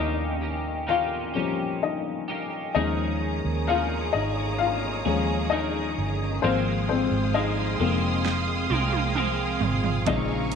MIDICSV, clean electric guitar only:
0, 0, Header, 1, 2, 480
1, 0, Start_track
1, 0, Key_signature, -4, "major"
1, 0, Tempo, 928793
1, 1422, Time_signature, 4, 2, 24, 8
1, 2374, Tempo, 911854
1, 5511, End_track
2, 0, Start_track
2, 0, Title_t, "Clean electric guitar"
2, 0, Program_c, 0, 27
2, 0, Note_on_c, 0, 51, 59
2, 0, Note_on_c, 0, 58, 68
2, 0, Note_on_c, 0, 61, 62
2, 0, Note_on_c, 0, 67, 71
2, 205, Note_off_c, 0, 67, 0
2, 211, Note_off_c, 0, 51, 0
2, 211, Note_off_c, 0, 61, 0
2, 212, Note_on_c, 0, 67, 43
2, 213, Note_off_c, 0, 58, 0
2, 217, Note_on_c, 0, 61, 35
2, 222, Note_on_c, 0, 58, 33
2, 448, Note_off_c, 0, 58, 0
2, 449, Note_on_c, 0, 51, 44
2, 451, Note_off_c, 0, 61, 0
2, 452, Note_off_c, 0, 67, 0
2, 455, Note_on_c, 0, 58, 49
2, 457, Note_on_c, 0, 61, 55
2, 460, Note_on_c, 0, 67, 56
2, 685, Note_off_c, 0, 67, 0
2, 691, Note_off_c, 0, 61, 0
2, 691, Note_on_c, 0, 67, 42
2, 693, Note_off_c, 0, 51, 0
2, 695, Note_off_c, 0, 58, 0
2, 697, Note_on_c, 0, 61, 39
2, 701, Note_on_c, 0, 58, 33
2, 1173, Note_off_c, 0, 67, 0
2, 1179, Note_on_c, 0, 67, 40
2, 1183, Note_off_c, 0, 61, 0
2, 1185, Note_on_c, 0, 61, 37
2, 1187, Note_off_c, 0, 58, 0
2, 1190, Note_on_c, 0, 58, 34
2, 1418, Note_off_c, 0, 58, 0
2, 1420, Note_off_c, 0, 61, 0
2, 1421, Note_off_c, 0, 67, 0
2, 1421, Note_on_c, 0, 51, 63
2, 1425, Note_on_c, 0, 58, 64
2, 1426, Note_on_c, 0, 61, 64
2, 1428, Note_on_c, 0, 68, 66
2, 1896, Note_off_c, 0, 51, 0
2, 1896, Note_off_c, 0, 58, 0
2, 1898, Note_on_c, 0, 51, 50
2, 1899, Note_off_c, 0, 61, 0
2, 1902, Note_on_c, 0, 58, 54
2, 1906, Note_on_c, 0, 61, 57
2, 1907, Note_off_c, 0, 68, 0
2, 1909, Note_on_c, 0, 68, 55
2, 2131, Note_off_c, 0, 68, 0
2, 2137, Note_off_c, 0, 61, 0
2, 2137, Note_on_c, 0, 68, 40
2, 2138, Note_off_c, 0, 51, 0
2, 2139, Note_off_c, 0, 58, 0
2, 2143, Note_on_c, 0, 61, 37
2, 2148, Note_on_c, 0, 58, 33
2, 2613, Note_off_c, 0, 68, 0
2, 2615, Note_off_c, 0, 61, 0
2, 2615, Note_on_c, 0, 68, 46
2, 2620, Note_off_c, 0, 58, 0
2, 2622, Note_on_c, 0, 61, 40
2, 2626, Note_on_c, 0, 58, 34
2, 2855, Note_off_c, 0, 58, 0
2, 2858, Note_off_c, 0, 68, 0
2, 2858, Note_on_c, 0, 51, 49
2, 2859, Note_off_c, 0, 61, 0
2, 2861, Note_on_c, 0, 58, 49
2, 2865, Note_on_c, 0, 61, 57
2, 2869, Note_on_c, 0, 68, 57
2, 3341, Note_on_c, 0, 44, 58
2, 3343, Note_off_c, 0, 51, 0
2, 3343, Note_off_c, 0, 58, 0
2, 3344, Note_on_c, 0, 51, 67
2, 3345, Note_off_c, 0, 61, 0
2, 3345, Note_on_c, 0, 53, 65
2, 3346, Note_off_c, 0, 68, 0
2, 3347, Note_on_c, 0, 56, 66
2, 3347, Note_on_c, 0, 60, 77
2, 3349, Note_on_c, 0, 65, 69
2, 3817, Note_off_c, 0, 53, 0
2, 3819, Note_on_c, 0, 53, 52
2, 3822, Note_off_c, 0, 44, 0
2, 3822, Note_off_c, 0, 56, 0
2, 3823, Note_off_c, 0, 51, 0
2, 3823, Note_off_c, 0, 60, 0
2, 3824, Note_on_c, 0, 56, 57
2, 3828, Note_off_c, 0, 65, 0
2, 3829, Note_on_c, 0, 60, 60
2, 3830, Note_on_c, 0, 65, 55
2, 4052, Note_off_c, 0, 65, 0
2, 4057, Note_off_c, 0, 60, 0
2, 4058, Note_on_c, 0, 65, 42
2, 4060, Note_off_c, 0, 53, 0
2, 4060, Note_off_c, 0, 56, 0
2, 4063, Note_on_c, 0, 60, 42
2, 4066, Note_on_c, 0, 56, 39
2, 4070, Note_on_c, 0, 53, 34
2, 4535, Note_off_c, 0, 65, 0
2, 4536, Note_off_c, 0, 60, 0
2, 4537, Note_on_c, 0, 65, 49
2, 4543, Note_on_c, 0, 60, 47
2, 4544, Note_off_c, 0, 56, 0
2, 4545, Note_off_c, 0, 53, 0
2, 4546, Note_on_c, 0, 56, 44
2, 4547, Note_on_c, 0, 53, 38
2, 4770, Note_off_c, 0, 53, 0
2, 4775, Note_off_c, 0, 56, 0
2, 4776, Note_on_c, 0, 53, 54
2, 4777, Note_off_c, 0, 65, 0
2, 4778, Note_off_c, 0, 60, 0
2, 4781, Note_on_c, 0, 56, 59
2, 4784, Note_on_c, 0, 60, 62
2, 4787, Note_on_c, 0, 65, 70
2, 5256, Note_off_c, 0, 53, 0
2, 5256, Note_on_c, 0, 46, 69
2, 5257, Note_off_c, 0, 56, 0
2, 5258, Note_on_c, 0, 53, 70
2, 5259, Note_off_c, 0, 60, 0
2, 5259, Note_on_c, 0, 56, 70
2, 5261, Note_off_c, 0, 65, 0
2, 5261, Note_on_c, 0, 61, 72
2, 5263, Note_on_c, 0, 65, 72
2, 5511, Note_off_c, 0, 46, 0
2, 5511, Note_off_c, 0, 53, 0
2, 5511, Note_off_c, 0, 56, 0
2, 5511, Note_off_c, 0, 61, 0
2, 5511, Note_off_c, 0, 65, 0
2, 5511, End_track
0, 0, End_of_file